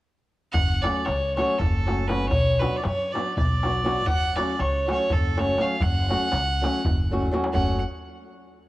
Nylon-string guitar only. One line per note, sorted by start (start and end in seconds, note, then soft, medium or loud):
0.83 1.01 F#3 medium
0.83 1.01 A3 soft
0.83 1.02 C#4 soft
0.83 1.02 F#4 medium
1.37 1.54 F#3 medium
1.37 1.55 A3 soft
1.37 1.54 C#4 soft
1.37 1.55 F#4 medium
1.86 2.03 F#3 soft
1.86 2.03 A3 soft
1.86 2.03 C#4 soft
1.86 2.04 F#4 medium
2.09 2.25 F#3 medium
2.09 2.25 A3 medium
2.09 2.26 C#4 soft
2.09 2.26 F#4 medium
2.60 2.77 F#3 medium
2.60 2.78 B3 soft
2.60 2.78 D4 soft
2.60 2.79 F#4 medium
3.14 3.31 F#3 medium
3.14 3.31 B3 soft
3.14 3.31 D4 soft
3.14 3.32 F#4 medium
3.63 3.80 F#3 soft
3.63 3.80 B3 soft
3.63 3.80 D4 soft
3.63 3.80 F#4 medium
3.84 4.01 F#3 medium
3.84 4.01 B3 medium
3.84 4.01 D4 soft
3.84 4.02 F#4 medium
4.37 4.54 F#3 medium
4.37 4.54 A3 soft
4.37 4.55 C#4 soft
4.37 4.54 F#4 medium
4.87 5.05 F#3 medium
4.87 5.05 A3 soft
4.87 5.05 C#4 soft
4.87 5.05 F#4 medium
5.37 5.54 F#3 soft
5.37 5.54 A3 soft
5.37 5.54 C#4 soft
5.37 5.54 F#4 medium
5.58 5.75 F#3 medium
5.58 5.75 A3 soft
5.58 5.75 C#4 medium
5.58 5.75 F#4 medium
6.09 6.27 F#3 medium
6.09 6.28 A3 soft
6.09 6.28 C#4 soft
6.09 6.28 F#4 medium
6.62 6.79 F#3 medium
6.62 6.79 A3 medium
6.62 6.79 C#4 medium
6.62 6.80 F#4 medium
7.11 7.27 F#3 soft
7.11 7.27 A3 soft
7.11 7.28 C#4 medium
7.11 7.28 F#4 medium
7.31 7.48 F#3 medium
7.31 7.49 A3 medium
7.31 7.49 C#4 medium
7.31 7.49 F#4 medium
7.53 7.81 F#3 medium
7.53 7.81 A3 medium
7.53 7.81 C#4 medium
7.53 7.81 F#4 medium